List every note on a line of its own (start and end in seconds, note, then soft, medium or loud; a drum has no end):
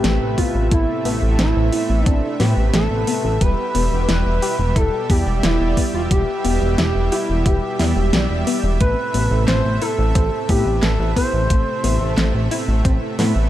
0.00 0.17 A2 medium
0.00 3.37 C3 medium
0.00 0.17 A3 medium
0.00 3.37 A3 medium
0.00 0.17 B3 medium
0.00 0.17 C4 medium
0.00 0.17 E4 medium
0.00 0.34 G4 loud
0.00 0.40 G4 loud
0.00 0.17 B4 medium
0.00 13.49 E5 medium
0.04 0.19 A1 loud
0.04 0.32 A3 loud
0.04 snare loud
0.04 closed hi-hat loud
0.21 0.36 A1 medium
0.21 0.68 A2 medium
0.21 0.68 A3 medium
0.21 0.68 B3 medium
0.21 0.68 C4 medium
0.21 0.68 E4 medium
0.21 0.68 B4 loud
0.38 0.66 B3 medium
0.38 0.69 F4 medium
0.38 0.72 F4 loud
0.38 kick medium
0.38 open hi-hat medium
0.55 0.69 A1 medium
0.71 0.86 A1 loud
0.71 1.18 A2 medium
0.71 1.00 A3 medium
0.71 1.18 A3 medium
0.71 1.18 B3 medium
0.71 1.18 C4 medium
0.71 1.35 E4 medium
0.71 1.18 E4 medium
0.71 1.35 E4 loud
0.71 1.18 A4 medium
0.71 kick loud
0.71 closed hi-hat medium
1.05 1.20 A1 loud
1.05 1.22 B3 medium
1.05 open hi-hat medium
1.22 1.37 A1 medium
1.22 1.69 A2 loud
1.22 1.69 A3 medium
1.22 1.69 B3 medium
1.22 1.69 C4 medium
1.22 1.69 E4 medium
1.22 1.69 A4 loud
1.39 1.54 A1 loud
1.39 1.67 C4 medium
1.39 2.07 E4 medium
1.39 2.08 E4 loud
1.39 snare loud
1.39 closed hi-hat loud
1.56 1.71 A1 medium
1.73 2.36 A2 medium
1.73 2.36 A3 medium
1.73 2.36 B3 medium
1.73 2.36 C4 medium
1.73 2.01 E4 medium
1.73 2.36 E4 medium
1.73 2.36 A4 medium
1.73 open hi-hat medium
1.90 2.04 A1 medium
2.06 2.21 A1 loud
2.06 2.34 C4 loud
2.06 2.36 D4 medium
2.06 2.42 D4 loud
2.06 kick loud
2.06 closed hi-hat medium
2.40 2.87 A2 medium
2.40 2.55 A2 loud
2.40 2.87 A3 medium
2.40 2.68 B3 medium
2.40 2.87 B3 medium
2.40 2.87 C4 medium
2.40 2.87 E4 medium
2.40 2.72 G4 loud
2.40 2.74 G4 loud
2.40 2.87 B4 medium
2.40 snare medium
2.40 open hi-hat medium
2.57 2.72 A1 medium
2.74 2.89 A1 loud
2.74 3.02 A3 loud
2.74 3.37 A4 loud
2.74 3.43 A4 loud
2.74 snare loud
2.74 closed hi-hat loud
2.91 3.05 A1 medium
2.91 3.37 A2 medium
2.91 3.37 A3 medium
2.91 3.37 B3 medium
2.91 3.37 C4 medium
2.91 3.37 E4 medium
2.91 3.37 B4 loud
3.07 3.35 B3 medium
3.07 open hi-hat medium
3.24 3.39 A1 medium
3.41 3.56 E1 loud
3.41 8.77 B2 medium
3.41 3.88 G3 medium
3.41 3.69 G3 medium
3.41 8.77 G3 medium
3.41 3.88 B3 medium
3.41 3.88 E4 medium
3.41 3.88 G4 medium
3.41 8.77 G4 medium
3.41 3.88 B4 medium
3.41 4.05 B4 loud
3.41 4.08 B4 loud
3.41 kick loud
3.41 closed hi-hat medium
3.75 3.90 E1 loud
3.75 3.92 B3 medium
3.75 open hi-hat medium
3.92 4.06 E1 medium
3.92 4.38 G3 loud
3.92 4.38 B3 medium
3.92 4.38 E4 medium
3.92 4.38 G4 medium
3.92 4.38 B4 loud
4.08 4.23 E1 loud
4.08 4.37 E4 medium
4.08 4.72 B4 loud
4.08 4.78 B4 loud
4.08 snare loud
4.08 closed hi-hat loud
4.26 4.40 E1 medium
4.42 5.06 G3 medium
4.42 5.06 B3 medium
4.42 5.06 E4 medium
4.42 4.70 G4 medium
4.42 5.06 G4 medium
4.42 5.06 B4 medium
4.42 open hi-hat medium
4.59 4.74 E1 medium
4.76 4.91 E1 loud
4.76 5.04 E4 loud
4.76 5.08 A4 loud
4.76 5.12 A4 loud
4.76 kick loud
4.76 closed hi-hat medium
5.10 5.25 E2 loud
5.10 5.56 G3 medium
5.10 5.38 B3 medium
5.10 5.56 B3 medium
5.10 5.56 E4 medium
5.10 5.56 G4 medium
5.10 5.41 G4 medium
5.10 5.45 G4 loud
5.10 5.56 D5 medium
5.10 kick loud
5.10 open hi-hat medium
5.27 5.41 E1 medium
5.43 5.58 E1 loud
5.43 5.71 G3 loud
5.43 5.91 E4 medium
5.43 5.94 E4 medium
5.43 snare loud
5.43 closed hi-hat medium
5.60 5.75 E1 medium
5.60 6.07 G3 medium
5.60 6.07 B3 medium
5.60 6.07 E4 medium
5.60 6.07 G4 medium
5.60 6.07 D5 loud
5.77 6.05 B3 medium
5.77 kick medium
5.77 open hi-hat medium
5.94 6.09 E1 medium
5.94 6.02 F4 medium
6.11 6.26 E1 loud
6.11 6.39 G3 medium
6.11 6.57 G3 medium
6.11 6.57 B3 medium
6.11 6.57 E4 medium
6.11 6.57 G4 medium
6.11 6.74 G4 loud
6.11 6.75 G4 medium
6.11 6.57 B4 medium
6.11 kick loud
6.11 closed hi-hat medium
6.44 6.59 E1 medium
6.44 6.61 B3 medium
6.44 open hi-hat medium
6.61 6.76 E1 medium
6.61 7.08 G3 loud
6.61 7.08 B3 medium
6.61 7.08 E4 medium
6.61 7.08 G4 medium
6.61 7.08 B4 loud
6.78 6.93 E1 loud
6.78 7.06 E4 medium
6.78 7.10 G4 medium
6.78 7.13 G4 medium
6.78 snare loud
6.78 closed hi-hat medium
6.95 7.10 E1 medium
7.12 7.75 G3 medium
7.12 7.75 B3 medium
7.12 7.47 E4 medium
7.12 7.43 E4 medium
7.12 7.75 E4 medium
7.12 7.40 G4 medium
7.12 7.75 G4 medium
7.12 7.75 B4 medium
7.12 open hi-hat medium
7.29 7.44 E1 medium
7.46 7.60 E1 loud
7.46 7.74 E4 loud
7.46 8.13 G4 medium
7.46 8.09 G4 medium
7.46 kick loud
7.46 closed hi-hat medium
7.79 7.94 E2 loud
7.79 8.26 G3 medium
7.79 8.26 B3 medium
7.79 7.96 E4 medium
7.79 8.26 E4 medium
7.79 8.26 G4 medium
7.79 8.26 D5 loud
7.79 snare medium
7.79 open hi-hat medium
7.96 8.11 E1 medium
8.13 8.28 B1 loud
8.13 8.30 G3 medium
8.13 snare loud
8.13 closed hi-hat medium
8.30 8.45 E1 medium
8.30 8.77 G3 medium
8.30 8.77 B3 medium
8.30 8.77 E4 medium
8.30 8.77 G4 medium
8.30 8.77 D5 loud
8.47 8.64 B3 medium
8.47 open hi-hat medium
8.64 8.78 E1 medium
8.80 8.95 A1 loud
8.80 9.27 A2 medium
8.80 13.49 C3 medium
8.80 9.09 A3 medium
8.80 9.27 A3 medium
8.80 13.49 A3 medium
8.80 9.27 B3 medium
8.80 9.27 C4 medium
8.80 9.27 E4 medium
8.80 9.27 A4 medium
8.80 9.44 B4 loud
8.80 kick loud
8.80 closed hi-hat medium
9.14 9.29 A1 medium
9.14 9.31 B3 medium
9.14 open hi-hat medium
9.31 9.46 A1 medium
9.31 9.78 A2 loud
9.31 9.78 A3 medium
9.31 9.78 B3 medium
9.31 9.78 C4 medium
9.31 9.78 E4 medium
9.31 9.78 A4 loud
9.48 9.63 A1 loud
9.48 9.76 C4 medium
9.48 9.83 C5 loud
9.48 9.79 C5 loud
9.48 snare loud
9.48 clap medium
9.48 closed hi-hat medium
9.65 9.80 A1 medium
9.81 10.45 A2 medium
9.81 10.45 A3 medium
9.81 10.45 B3 medium
9.81 10.45 C4 medium
9.81 10.10 E4 medium
9.81 10.45 E4 medium
9.81 10.45 A4 loud
9.81 10.45 A4 medium
9.81 10.51 A4 loud
9.81 open hi-hat medium
9.99 10.13 A1 medium
10.15 10.30 A1 loud
10.15 10.43 C4 loud
10.15 kick loud
10.15 closed hi-hat medium
10.49 10.64 A2 loud
10.49 10.96 A2 medium
10.49 10.96 A3 medium
10.49 10.77 B3 medium
10.49 10.96 B3 medium
10.49 10.96 C4 medium
10.49 10.96 E4 medium
10.49 10.85 G4 medium
10.49 10.81 G4 medium
10.49 10.96 B4 medium
10.49 kick loud
10.49 open hi-hat medium
10.66 10.81 A1 medium
10.82 10.97 A1 loud
10.82 11.11 A3 loud
10.82 11.16 A4 loud
10.82 11.14 A4 loud
10.82 snare loud
10.82 clap medium
10.82 closed hi-hat medium
10.99 11.14 A1 medium
10.99 11.46 A2 medium
10.99 11.46 A3 medium
10.99 11.46 B3 medium
10.99 11.46 C4 medium
10.99 11.46 E4 medium
10.99 11.46 B4 loud
11.16 11.44 B3 medium
11.16 12.47 C5 loud
11.16 12.48 C5 medium
11.16 kick medium
11.16 open hi-hat medium
11.33 11.48 A1 medium
11.50 11.65 A1 loud
11.50 11.97 A2 medium
11.50 11.78 A3 medium
11.50 11.97 A3 medium
11.50 11.97 C4 medium
11.50 11.97 E4 medium
11.50 11.97 A4 medium
11.50 kick loud
11.50 closed hi-hat medium
11.84 11.99 A1 loud
11.84 12.01 B3 medium
11.84 open hi-hat medium
12.01 12.15 A1 medium
12.01 12.47 A2 loud
12.01 12.47 A3 medium
12.01 12.47 C4 medium
12.01 12.47 E4 medium
12.01 12.47 A4 loud
12.17 12.32 A1 loud
12.17 12.46 C4 medium
12.17 snare loud
12.17 clap loud
12.17 closed hi-hat medium
12.34 12.49 A1 medium
12.51 13.15 A2 medium
12.51 13.15 A3 medium
12.51 13.15 B3 medium
12.51 13.15 C4 medium
12.51 12.79 E4 medium
12.51 13.15 E4 medium
12.51 13.15 A4 medium
12.51 open hi-hat medium
12.68 12.83 A1 medium
12.85 13.00 A1 loud
12.85 13.13 C4 loud
12.85 kick loud
12.85 closed hi-hat medium
13.19 13.49 A2 medium
13.19 13.34 A2 medium
13.19 13.49 A3 medium
13.19 13.47 B3 medium
13.19 13.49 B3 medium
13.19 13.49 C4 medium
13.19 13.49 E4 medium
13.19 13.49 B4 medium
13.19 snare medium
13.19 open hi-hat medium
13.36 13.49 A1 medium